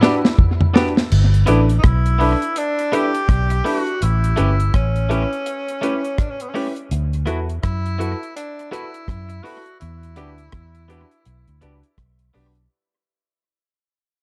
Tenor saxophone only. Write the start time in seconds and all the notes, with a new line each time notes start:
Already playing: E4
1.79 D#4
1.86 E4
2.58 D4
2.95 G4
3.68 F#4
4.03 E4
4.75 C#4
6.19 D4
6.30 C#4
6.42 B3
6.49 C#4
7.64 E4
8.36 D4
8.72 E4
9.43 F#4
9.80 E4